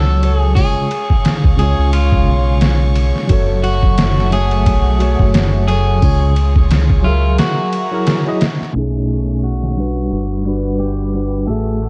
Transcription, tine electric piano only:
Already playing: F#3 F#4 A4 C#5
0.23 F#3 F#4 A4 C#5
0.55 C#3 G#3 F4 C#5
1.57 C#3 G#3 F4
1.63 C#5
3.27 F#3 F#4 A4
3.33 C#5
4.31 F#3 A3 F#4 C#5
4.99 F#3 A3 F#4 C#5
5.68 F#3 F#4 A4 C#5
6.02 C#3 G#3 F4 C#5
7.03 F#3 G#4 E5
7.08 A#4
7.91 F#3 E4 G#4 A#4
8.25 F#3 E4 G#4 D#5
8.73 B2 A3 C#4
8.77 D#4 G#4
9.77 G3 D4 F#4 B4
10.46 G3 D4 F#4 B4
11.13 G3 D4 F#4 B4
11.48 A3 F#4 G#4 E5

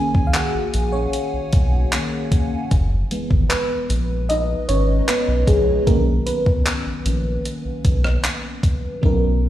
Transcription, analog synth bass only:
0.15 C#2
0.54 A#1
0.74 A#1
1.33 B1
1.53 B1
2.71 F#1
3.31 G#1
3.90 A#1
4.69 G#1
5.28 B1
5.47 A#1
5.87 B1
6.46 C#2
6.86 A#1
7.05 A#1
7.65 B1
7.85 B1
9.03 B1

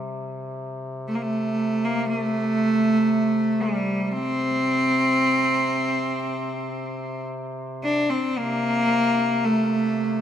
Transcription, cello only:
1.08 A3
1.15 A#3
1.21 A3
1.84 A#3
2.09 A3
3.60 G3
4.11 C4
7.83 D4
8.10 C4
8.38 A#3
9.45 A3

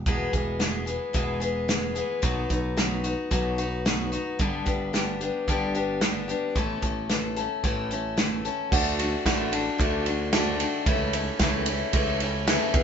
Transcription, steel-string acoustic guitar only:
0.06 E2 B2 E3 G#3 B3 G#4
0.33 E3 G#3 B3 G#4
0.59 E3 G#3 B3 G#4
0.86 E3 G#3 B3 G#4
1.13 E2 B2 E3 G#3 B3 G#4
1.40 E3 G#3 B3 G#4
1.68 E3 G#3 B3 G#4
1.95 E3 G#3 B3 G#4
2.22 B2 F#3 B3 D#4 F#4
2.49 B3 D#4 F#4
2.77 F#3 B3 D#4 F#4
3.04 B3 D#4 F#4
3.31 B2 F#3 B3 D#4 F#4
3.58 B3 D#4 F#4
3.85 F#3 B3 D#4 F#4
4.12 B3 D#4 F#4
4.39 G2 D3 G3 B3 D4 G4
4.65 G3 B3 D4 G4
4.93 G3 B3 D4 G4
5.20 G3 B3 D4 G4
5.48 G2 D3 G3 B3 D4 G4
5.75 G3 B3 D4 G4
6.01 G3 B3 D4 G4
6.28 G3 B3 D4 G4
6.56 A2 E3 A3 C#4 A4
6.82 A3 C#4 A4
7.10 E3 A3 C#4 A4
7.36 A3 C#4 A4
7.64 A2 E3 A3 C#4 A4
7.91 A3 C#4 A4
8.17 E3 A3 C#4 A4
8.45 A3 C#4 A4
8.72 D3 A3 D4 F#4
8.99 A3 D4 F#4
9.26 D3 A3 D4 F#4
9.52 A3 D4 F#4
9.78 D3 A3 D4 F#4
10.06 A3 D4 F#4
10.33 D3 A3 D4 F#4
10.59 A3 D4 F#4
10.86 C#3 E3 A3 C#4 E4
11.13 A3 C#4 E4
11.41 C#3 E3 A3 C#4 E4
11.68 A3 C#4 E4
11.94 E3 A3 C#4 E4
12.22 A3 C#4 E4
12.47 C#3 E3 A3 C#4 E4
12.74 E3 G#3 B3 G#4

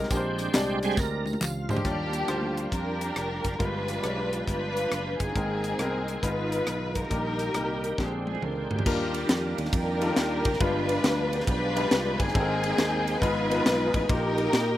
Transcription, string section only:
1.71 A#3 D4 G4
2.73 D4 G4 A#4
3.61 D4 F4 B4
4.48 D4 F4 B4
5.21 C4 D#4 G#4
6.24 D#4 F4 B4
6.96 D#4 G4 A#4
7.99 C4 D4 G4
8.28 G#4
8.43 D4 F4 A#4
8.71 A#3 D4 G4
9.74 D4 G4 A#4
10.61 D4 F4 B4
11.49 D4 F4 B4
12.20 C4 D#4 G#4
13.22 D#4 F4 B4
14.10 D#4 G4 A#4

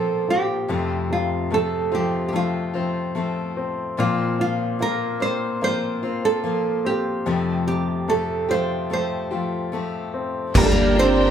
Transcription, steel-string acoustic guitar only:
Already playing: F3 A#3 C4 F4
0.68 F2 C3 F3 A3 C4 F4
1.50 F3 A3 C4 F4
1.92 F3 A3 C4 F4
2.33 F3 A3 C4 F4
2.74 F3 A3 C4 F4
3.15 F3 A3 C4 F4
3.97 A#2 F3 A#3 C4 F4
4.79 F3 A#3 C4 F4
5.20 A#3 C4 F4
5.61 F3 A#3 C4 F4
6.03 A#3 C4 F4
6.44 F3 A#3 C4 F4
7.26 F2 C3 F3 A3 C4 G4
8.08 F3 A3 C4 G4
8.49 F3 A3 C4 G4
8.90 F3 A3 C4 G4
9.31 F3 A3 C4 G4
9.72 F3 A3 C4 G4
10.54 G3 A#3 D4 F4
10.95 A#3 D4 F4

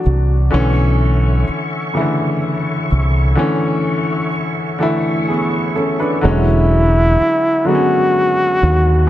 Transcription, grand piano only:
Already playing: E3 F#3 A3 D4
0.50 D3 E3 A3 C#4
1.93 C#3 E3 A3 E4
2.00 D3
3.35 D3 E3 A3 C#4
4.79 D3 E3 A3 E4
5.28 B3 G#4
5.75 C#4 A4
6.00 D4 B4
6.21 D3 F#3 G#3 C#4
7.65 D3 F#3 G#3 B3
7.75 C#4

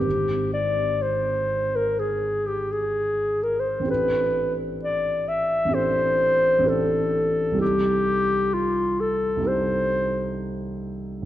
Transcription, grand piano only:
Already playing: G#1 C4
0.00 G4 C5
3.80 A1 C4 D4
3.85 G4 A4
5.65 A1 C4 D4
5.71 G4 A4
6.59 A1 C4
6.63 D4 G4 A4
7.51 C2 G3 D#4
7.57 G4 A4
9.37 C2 G3 D#4
9.43 G4 A4

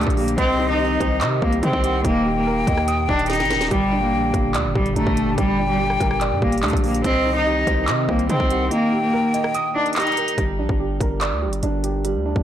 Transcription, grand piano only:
Already playing: G3 D4 G4 A#4 D5
0.17 G4
0.38 C4
0.59 D#4
0.80 G4
1.00 C5
1.21 D#5
1.42 C4
1.63 D#4
1.84 G4
2.05 D#4
2.25 G4
2.46 A#4
2.67 D#5
2.88 D#6
3.09 D#4
3.30 G4
3.50 A#4
3.71 G3
3.92 D4
4.13 G4
4.55 D5
4.75 G3
4.96 D4
5.17 G4
5.38 G3
5.59 D4
5.80 G4
6.00 A#4
6.21 D5
6.42 G3
6.63 D4
6.84 G4
7.04 C4
7.25 D#4
7.46 G4
7.67 C5
7.88 D#5
8.09 C4
8.30 D#4
8.50 G4
8.71 D#4
8.92 G4
9.13 A#4
9.34 D#5
9.55 D#6
9.75 D#4
9.96 G4
10.17 A#4
10.38 G3
10.59 D4
10.80 G4
11.00 A#4
11.21 D5
11.42 G3
11.63 D4
11.84 G4
12.05 G3
12.25 D4

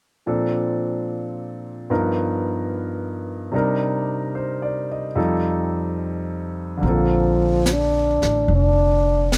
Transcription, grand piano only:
0.26 A#2 F3 C4 D4 A4
1.90 G2 F3 B3 D#4 A#4
3.52 C3 G3 D4 D#4
3.56 A#4
4.35 C5
4.62 D5
4.92 D#5
5.15 F2 F3 G3 D#4 A4
6.77 D3 A#3
6.85 C4 A4

